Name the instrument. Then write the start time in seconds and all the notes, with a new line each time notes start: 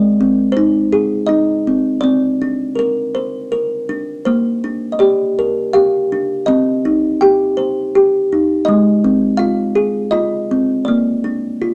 kalimba
Already playing: G#3 D5
0.21 C4
0.52 C5
0.57 D#4
0.92 G#4
1.26 D#4 D#5
1.67 C4
2.01 C4 D5
2.42 D4
2.75 A#4
3.15 C5
3.52 A#4
3.89 D4
4.25 A#3 C5
4.64 D4
4.92 D#5
4.99 G4 D5
5.39 A#4
5.73 G4 F5
6.12 D4
6.46 C4 D#5
6.85 D#4
7.21 G4 G5
7.57 C5
7.95 G4
8.32 D#4
8.65 G#3 D#5
9.04 C4
9.37 F4 F5
9.75 G#4
10.11 F4 D#5
10.51 C4
10.85 A#3 D5
11.24 D4
11.62 F4